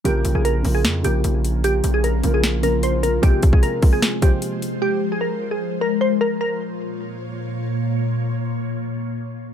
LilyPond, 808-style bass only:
\new Staff \with { instrumentName = "808-style bass" } { \clef bass \time 4/4 \key bes \dorian \tempo 4 = 151 bes,,8 bes,,16 bes,,8. bes,,8 f,8 bes,,8 bes,,4~ | bes,,8 bes,,4 bes,,2~ bes,,8 | r1 | r1 |
r1 | r1 | }